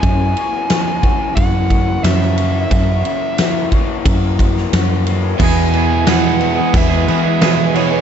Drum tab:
CC |----------------|----------------|x-x-x-x-x-x-x-x-|
RD |x-x-x-x-x-x-x-x-|x-x-x-x-x-x-x-x-|----------------|
SD |----o-------oo--|----o------oo---|----o-------o---|
BD |o-----o-o-o-----|o-----o-o-o-----|o-------o-------|